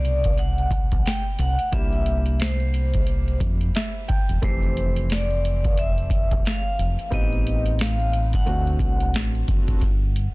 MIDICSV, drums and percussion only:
0, 0, Header, 1, 2, 480
1, 0, Start_track
1, 0, Tempo, 674157
1, 1230, Time_signature, 4, 2, 24, 8
1, 7365, End_track
2, 0, Start_track
2, 0, Title_t, "Drums"
2, 34, Note_on_c, 9, 42, 75
2, 105, Note_off_c, 9, 42, 0
2, 171, Note_on_c, 9, 42, 52
2, 179, Note_on_c, 9, 36, 81
2, 243, Note_off_c, 9, 42, 0
2, 250, Note_off_c, 9, 36, 0
2, 267, Note_on_c, 9, 42, 70
2, 339, Note_off_c, 9, 42, 0
2, 414, Note_on_c, 9, 42, 37
2, 486, Note_off_c, 9, 42, 0
2, 504, Note_on_c, 9, 36, 93
2, 509, Note_on_c, 9, 42, 75
2, 575, Note_off_c, 9, 36, 0
2, 580, Note_off_c, 9, 42, 0
2, 653, Note_on_c, 9, 42, 50
2, 655, Note_on_c, 9, 36, 95
2, 724, Note_off_c, 9, 42, 0
2, 726, Note_off_c, 9, 36, 0
2, 752, Note_on_c, 9, 42, 77
2, 764, Note_on_c, 9, 38, 102
2, 823, Note_off_c, 9, 42, 0
2, 836, Note_off_c, 9, 38, 0
2, 987, Note_on_c, 9, 42, 71
2, 1058, Note_off_c, 9, 42, 0
2, 1130, Note_on_c, 9, 42, 49
2, 1201, Note_off_c, 9, 42, 0
2, 1229, Note_on_c, 9, 42, 73
2, 1230, Note_on_c, 9, 36, 115
2, 1300, Note_off_c, 9, 42, 0
2, 1301, Note_off_c, 9, 36, 0
2, 1372, Note_on_c, 9, 42, 32
2, 1443, Note_off_c, 9, 42, 0
2, 1467, Note_on_c, 9, 42, 70
2, 1538, Note_off_c, 9, 42, 0
2, 1607, Note_on_c, 9, 42, 59
2, 1678, Note_off_c, 9, 42, 0
2, 1707, Note_on_c, 9, 42, 77
2, 1722, Note_on_c, 9, 38, 105
2, 1778, Note_off_c, 9, 42, 0
2, 1794, Note_off_c, 9, 38, 0
2, 1851, Note_on_c, 9, 42, 33
2, 1922, Note_off_c, 9, 42, 0
2, 1950, Note_on_c, 9, 42, 77
2, 2021, Note_off_c, 9, 42, 0
2, 2090, Note_on_c, 9, 42, 54
2, 2098, Note_on_c, 9, 36, 78
2, 2161, Note_off_c, 9, 42, 0
2, 2169, Note_off_c, 9, 36, 0
2, 2183, Note_on_c, 9, 42, 73
2, 2254, Note_off_c, 9, 42, 0
2, 2334, Note_on_c, 9, 42, 36
2, 2405, Note_off_c, 9, 42, 0
2, 2423, Note_on_c, 9, 36, 93
2, 2427, Note_on_c, 9, 42, 81
2, 2495, Note_off_c, 9, 36, 0
2, 2498, Note_off_c, 9, 42, 0
2, 2569, Note_on_c, 9, 42, 52
2, 2640, Note_off_c, 9, 42, 0
2, 2669, Note_on_c, 9, 42, 82
2, 2681, Note_on_c, 9, 38, 99
2, 2740, Note_off_c, 9, 42, 0
2, 2752, Note_off_c, 9, 38, 0
2, 2910, Note_on_c, 9, 42, 73
2, 2914, Note_on_c, 9, 36, 85
2, 2981, Note_off_c, 9, 42, 0
2, 2986, Note_off_c, 9, 36, 0
2, 3056, Note_on_c, 9, 42, 50
2, 3127, Note_off_c, 9, 42, 0
2, 3151, Note_on_c, 9, 36, 117
2, 3152, Note_on_c, 9, 42, 83
2, 3222, Note_off_c, 9, 36, 0
2, 3223, Note_off_c, 9, 42, 0
2, 3296, Note_on_c, 9, 42, 31
2, 3367, Note_off_c, 9, 42, 0
2, 3396, Note_on_c, 9, 42, 66
2, 3467, Note_off_c, 9, 42, 0
2, 3534, Note_on_c, 9, 42, 60
2, 3605, Note_off_c, 9, 42, 0
2, 3630, Note_on_c, 9, 42, 75
2, 3645, Note_on_c, 9, 38, 92
2, 3701, Note_off_c, 9, 42, 0
2, 3717, Note_off_c, 9, 38, 0
2, 3778, Note_on_c, 9, 42, 35
2, 3849, Note_off_c, 9, 42, 0
2, 3880, Note_on_c, 9, 42, 72
2, 3952, Note_off_c, 9, 42, 0
2, 4018, Note_on_c, 9, 42, 52
2, 4021, Note_on_c, 9, 36, 88
2, 4089, Note_off_c, 9, 42, 0
2, 4092, Note_off_c, 9, 36, 0
2, 4111, Note_on_c, 9, 42, 75
2, 4183, Note_off_c, 9, 42, 0
2, 4257, Note_on_c, 9, 42, 36
2, 4328, Note_off_c, 9, 42, 0
2, 4344, Note_on_c, 9, 36, 91
2, 4349, Note_on_c, 9, 42, 85
2, 4415, Note_off_c, 9, 36, 0
2, 4420, Note_off_c, 9, 42, 0
2, 4495, Note_on_c, 9, 36, 107
2, 4497, Note_on_c, 9, 42, 46
2, 4566, Note_off_c, 9, 36, 0
2, 4568, Note_off_c, 9, 42, 0
2, 4595, Note_on_c, 9, 42, 73
2, 4607, Note_on_c, 9, 38, 102
2, 4666, Note_off_c, 9, 42, 0
2, 4678, Note_off_c, 9, 38, 0
2, 4837, Note_on_c, 9, 42, 67
2, 4908, Note_off_c, 9, 42, 0
2, 4976, Note_on_c, 9, 42, 45
2, 5047, Note_off_c, 9, 42, 0
2, 5068, Note_on_c, 9, 36, 101
2, 5071, Note_on_c, 9, 42, 77
2, 5140, Note_off_c, 9, 36, 0
2, 5142, Note_off_c, 9, 42, 0
2, 5214, Note_on_c, 9, 42, 28
2, 5286, Note_off_c, 9, 42, 0
2, 5317, Note_on_c, 9, 42, 72
2, 5388, Note_off_c, 9, 42, 0
2, 5451, Note_on_c, 9, 42, 60
2, 5522, Note_off_c, 9, 42, 0
2, 5547, Note_on_c, 9, 42, 79
2, 5563, Note_on_c, 9, 38, 99
2, 5618, Note_off_c, 9, 42, 0
2, 5634, Note_off_c, 9, 38, 0
2, 5693, Note_on_c, 9, 42, 36
2, 5764, Note_off_c, 9, 42, 0
2, 5791, Note_on_c, 9, 42, 69
2, 5862, Note_off_c, 9, 42, 0
2, 5931, Note_on_c, 9, 42, 50
2, 5937, Note_on_c, 9, 36, 83
2, 6003, Note_off_c, 9, 42, 0
2, 6008, Note_off_c, 9, 36, 0
2, 6029, Note_on_c, 9, 42, 75
2, 6100, Note_off_c, 9, 42, 0
2, 6174, Note_on_c, 9, 42, 36
2, 6245, Note_off_c, 9, 42, 0
2, 6261, Note_on_c, 9, 36, 87
2, 6268, Note_on_c, 9, 42, 77
2, 6333, Note_off_c, 9, 36, 0
2, 6339, Note_off_c, 9, 42, 0
2, 6411, Note_on_c, 9, 42, 46
2, 6482, Note_off_c, 9, 42, 0
2, 6509, Note_on_c, 9, 42, 82
2, 6521, Note_on_c, 9, 38, 102
2, 6580, Note_off_c, 9, 42, 0
2, 6592, Note_off_c, 9, 38, 0
2, 6657, Note_on_c, 9, 42, 34
2, 6728, Note_off_c, 9, 42, 0
2, 6750, Note_on_c, 9, 42, 69
2, 6751, Note_on_c, 9, 36, 88
2, 6822, Note_off_c, 9, 36, 0
2, 6822, Note_off_c, 9, 42, 0
2, 6891, Note_on_c, 9, 42, 43
2, 6893, Note_on_c, 9, 36, 91
2, 6963, Note_off_c, 9, 42, 0
2, 6964, Note_off_c, 9, 36, 0
2, 6987, Note_on_c, 9, 36, 100
2, 6987, Note_on_c, 9, 42, 80
2, 7058, Note_off_c, 9, 42, 0
2, 7059, Note_off_c, 9, 36, 0
2, 7234, Note_on_c, 9, 42, 73
2, 7305, Note_off_c, 9, 42, 0
2, 7365, End_track
0, 0, End_of_file